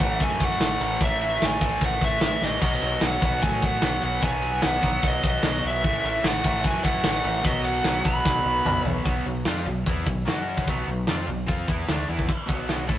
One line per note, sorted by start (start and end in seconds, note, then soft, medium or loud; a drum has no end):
0.00 0.19 A1 loud
0.00 1.00 A2 medium
0.00 1.00 E3 medium
0.00 1.00 A3 medium
0.00 0.19 F#5 loud
0.00 kick medium
0.20 0.57 F#2 loud
0.20 0.42 G#5 loud
0.20 kick medium
0.20 ride loud
0.40 0.82 F#5 loud
0.40 kick medium
0.40 ride medium
0.60 0.78 A1 medium
0.60 snare loud
0.60 ride loud
0.81 0.99 A1 loud
0.81 1.01 F#5 loud
0.81 ride medium
1.01 1.38 A1 medium
1.01 1.60 A2 loud
1.01 1.61 E3 loud
1.01 1.60 A3 loud
1.01 1.43 E5 medium
1.01 kick loud
1.01 ride loud
1.21 ride medium
1.42 1.60 A1 loud
1.42 1.84 G#5 medium
1.42 snare loud
1.42 ride loud
1.61 1.79 A1 medium
1.61 2.60 A2 medium
1.61 2.61 E3 medium
1.61 2.61 A3 medium
1.61 kick medium
1.61 ride medium
1.81 2.00 A1 medium
1.81 2.02 F#5 loud
1.81 kick medium
1.81 ride loud
2.01 2.20 A1 medium
2.01 2.43 E5 loud
2.01 kick medium
2.01 ride medium
2.21 2.40 A1 medium
2.21 snare loud
2.21 ride loud
2.41 2.60 A1 medium
2.41 3.05 D#5 medium
2.41 snare medium
2.60 2.80 B1 medium
2.60 3.24 B2 medium
2.60 3.22 F#3 loud
2.60 3.21 B3 loud
2.60 kick loud
2.60 crash loud
2.82 3.00 B1 medium
2.82 ride medium
3.01 3.20 B1 loud
3.01 3.42 F#5 loud
3.01 snare loud
3.01 ride loud
3.21 3.40 B1 medium
3.21 4.20 B2 medium
3.21 4.22 F#3 medium
3.21 4.21 B3 medium
3.21 kick medium
3.21 ride medium
3.43 3.79 A2 loud
3.43 3.63 G#5 loud
3.43 kick medium
3.43 ride loud
3.62 4.03 F#5 medium
3.62 kick medium
3.62 ride medium
3.82 4.01 B1 loud
3.82 snare loud
3.82 ride loud
4.02 4.21 B1 medium
4.02 4.22 F#5 loud
4.02 ride medium
4.21 4.60 B1 loud
4.21 4.81 B2 loud
4.21 4.82 F#3 loud
4.21 4.81 B3 loud
4.21 4.65 G#5 loud
4.21 kick loud
4.21 ride loud
4.42 ride medium
4.62 4.82 B1 loud
4.62 5.05 F#5 loud
4.62 snare loud
4.62 ride loud
4.82 5.02 B1 loud
4.82 5.83 B2 medium
4.82 5.83 F#3 medium
4.82 5.82 B3 medium
4.82 kick medium
4.82 ride medium
5.03 5.21 B1 medium
5.03 kick medium
5.03 ride loud
5.07 5.24 D#5 loud
5.23 5.42 B1 medium
5.23 5.62 D#5 medium
5.23 kick medium
5.23 ride medium
5.43 5.62 B1 medium
5.43 snare loud
5.43 ride loud
5.64 5.84 B1 medium
5.64 6.05 E5 loud
5.64 ride medium
5.84 6.02 A1 loud
5.84 6.43 A2 loud
5.84 6.43 E3 loud
5.84 6.42 A3 loud
5.84 kick loud
5.84 ride loud
6.03 6.22 A1 medium
6.03 6.26 E5 loud
6.03 ride medium
6.23 6.42 A1 medium
6.23 6.62 F#5 loud
6.23 snare loud
6.23 ride loud
6.43 6.63 A1 loud
6.43 7.44 A2 medium
6.43 7.44 E3 medium
6.43 7.43 A3 medium
6.43 kick loud
6.43 ride medium
6.64 7.01 F#2 loud
6.64 6.83 G#5 loud
6.64 kick medium
6.64 ride loud
6.84 7.25 F#5 loud
6.84 kick medium
6.84 ride medium
7.04 7.22 A1 medium
7.04 snare loud
7.04 ride loud
7.24 7.43 A1 loud
7.24 7.46 F#5 loud
7.24 ride medium
7.44 7.82 B1 loud
7.44 8.03 B2 loud
7.44 8.04 F#3 loud
7.44 8.03 B3 loud
7.44 7.64 D#5 loud
7.44 kick loud
7.44 ride loud
7.64 8.06 F#5 loud
7.64 ride medium
7.84 8.03 B1 loud
7.84 snare loud
7.84 ride loud
8.04 8.23 B1 medium
8.04 9.03 B2 medium
8.04 9.04 F#3 medium
8.04 9.04 B3 medium
8.04 8.82 B5 loud
8.04 kick medium
8.04 ride medium
8.25 8.44 B1 medium
8.25 kick medium
8.25 snare medium
8.45 8.63 B1 loud
8.65 8.83 B1 medium
8.65 mid tom loud
8.85 9.03 B1 medium
8.85 floor tom loud
9.04 9.24 B1 medium
9.04 9.24 B2 loud
9.04 9.25 F#3 loud
9.04 9.25 B3 loud
9.04 kick loud
9.04 open hi-hat medium
9.25 9.45 B1 medium
9.25 9.41 B2 medium
9.25 9.42 F#3 medium
9.45 9.65 F2 medium
9.45 9.65 F3 medium
9.45 9.65 C4 medium
9.45 9.66 F4 medium
9.45 snare loud
9.45 open hi-hat medium
9.66 9.85 B1 medium
9.66 9.83 B2 medium
9.66 9.83 F#3 medium
9.86 10.05 E2 medium
9.86 10.05 E3 medium
9.86 10.05 B3 medium
9.86 10.07 E4 loud
9.86 kick loud
9.86 open hi-hat medium
10.05 10.25 B1 medium
10.05 10.22 B2 medium
10.05 10.22 F#3 medium
10.05 kick medium
10.25 10.64 F#2 medium
10.25 10.66 F#3 medium
10.25 10.66 C#4 medium
10.25 10.66 F#4 loud
10.25 snare loud
10.25 open hi-hat medium
10.57 kick medium
10.67 10.86 B1 medium
10.67 10.87 B2 medium
10.67 10.87 F#3 loud
10.67 10.88 B3 loud
10.67 kick loud
10.67 open hi-hat medium
10.88 11.06 B1 medium
10.88 11.04 B2 medium
10.88 11.04 F#3 medium
11.07 11.27 F2 medium
11.07 11.27 F3 medium
11.07 11.27 C4 medium
11.07 11.27 F4 loud
11.07 snare loud
11.07 open hi-hat medium
11.28 11.46 B1 medium
11.28 11.44 B2 medium
11.28 11.44 F#3 medium
11.47 11.67 F2 medium
11.47 11.67 F3 medium
11.47 11.67 C4 loud
11.47 11.67 F4 medium
11.47 kick loud
11.47 open hi-hat medium
11.68 11.87 E2 medium
11.68 11.87 E3 medium
11.68 11.88 B3 medium
11.68 11.88 E4 medium
11.68 kick medium
11.88 12.07 D2 medium
11.88 12.08 D3 medium
11.88 12.08 A3 medium
11.88 12.08 D4 medium
11.88 snare loud
11.88 open hi-hat medium
12.08 12.28 E2 medium
12.08 12.28 E3 medium
12.08 12.28 B3 medium
12.08 12.28 E4 loud
12.19 kick medium
12.29 kick loud
12.29 crash loud
12.46 12.87 B1 medium
12.46 12.87 B2 medium
12.46 12.87 F#3 loud
12.46 12.88 B3 loud
12.46 kick loud
12.69 snare loud
12.69 open hi-hat medium
12.87 12.98 A2 medium
12.87 12.98 A3 medium
12.87 12.98 E4 medium
12.87 12.98 A4 medium
12.87 kick loud